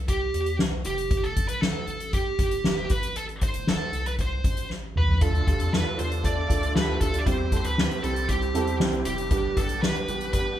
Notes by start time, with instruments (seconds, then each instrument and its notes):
Already playing: analog synth bass C2
0.08 lead electric guitar G4, kick, closed hi-hat
0.34 analog synth bass E2, closed hi-hat
0.46 closed hi-hat
0.59 analog synth bass C2, snare
0.85 analog synth bass F1, lead electric guitar G4, closed hi-hat
0.98 closed hi-hat
1.11 analog synth bass G1, kick, closed hi-hat
1.24 lead electric guitar A4, closed hi-hat
1.37 kick, closed hi-hat
1.48 analog synth bass B1, lead electric guitar B4, closed hi-hat
1.61 lead electric guitar A4, snare
1.87 analog synth bass A1, closed hi-hat
2.00 closed hi-hat
2.13 lead electric guitar G4, kick, closed hi-hat
2.39 analog synth bass G1, kick, closed hi-hat
2.51 closed hi-hat
2.64 snare
2.90 analog synth bass A1, lead electric guitar B4, kick, closed hi-hat
3.03 closed hi-hat
3.16 analog synth bass A1, lead electric guitar A4, closed hi-hat
3.29 closed hi-hat
3.42 lead electric guitar C5, kick, closed hi-hat
3.54 analog synth bass G1, closed hi-hat
3.67 lead electric guitar A4, snare
3.92 analog synth bass C2, closed hi-hat
4.06 lead electric guitar B4, closed hi-hat
4.19 lead electric guitar C5, kick, closed hi-hat
4.44 analog synth bass A1, kick, closed hi-hat
4.57 closed hi-hat
4.70 analog synth bass A1, snare
4.96 analog synth bass C2, lead electric guitar B4, mid tom
5.09 floor tom
5.21 analog synth bass D2, upright piano D3 A3 D4 F4 A4, tonewheel organ D3 D4 F4 A4, lead electric guitar A4, kick, closed hi-hat
5.35 closed hi-hat
5.47 upright piano A3 D4 F4 G4, lead electric guitar A4, kick, snare, closed hi-hat
5.60 analog synth bass F2, closed hi-hat
5.72 upright piano A3 D4 F4 A4, lead electric guitar B4, snare
5.98 analog synth bass E2, upright piano A3 D4 F4 B4, lead electric guitar C5, closed hi-hat
6.12 closed hi-hat
6.23 upright piano A3 D4 F4 A4, lead electric guitar D5, kick, closed hi-hat
6.48 analog synth bass D2, upright piano A3 D4 F4 A4, kick, closed hi-hat
6.63 closed hi-hat
6.74 upright piano A3 D4 F4 G4, lead electric guitar B4, snare
7.00 analog synth bass D2, upright piano A3 D4 F4 A4, lead electric guitar A4, kick, closed hi-hat
7.14 closed hi-hat
7.19 lead electric guitar D5
7.25 analog synth bass E2, upright piano E3 G3 C4 E4 G4, tonewheel organ C4 E4 G4, lead electric guitar C5, kick, closed hi-hat
7.52 upright piano G3 C4 E4 A4, kick, closed hi-hat
7.57 lead electric guitar C5
7.65 analog synth bass D2, lead electric guitar B4, closed hi-hat
7.78 upright piano G3 C4 E4 G4, snare
7.91 closed hi-hat
8.03 analog synth bass C2, upright piano G3 C4 E4 G4, lead electric guitar A4, closed hi-hat
8.16 closed hi-hat
8.28 upright piano G3 C4 E4 G4, lead electric guitar G4, kick, closed hi-hat
8.42 closed hi-hat
8.54 analog synth bass E2, upright piano G3 C4 E4 A4, closed hi-hat
8.67 closed hi-hat
8.79 analog synth bass C2, upright piano G3 C4 E4 G4, snare
8.93 closed hi-hat
9.05 analog synth bass F1, upright piano G3 C4 E4 G4, lead electric guitar G4, closed hi-hat
9.18 closed hi-hat
9.30 analog synth bass G1, upright piano G2 G3 B3 D4 G4, tonewheel organ B3 D4, kick, closed hi-hat
9.57 upright piano G3 B3 D4 G4, lead electric guitar A4, kick, closed hi-hat
9.69 analog synth bass B1, closed hi-hat
9.82 upright piano G3 B3 D4 G4, lead electric guitar B4, snare
9.95 closed hi-hat
10.08 analog synth bass A1, upright piano G3 B3 D4 G4, closed hi-hat
10.21 closed hi-hat
10.33 upright piano G3 B3 D4 G4, lead electric guitar B4, kick, closed hi-hat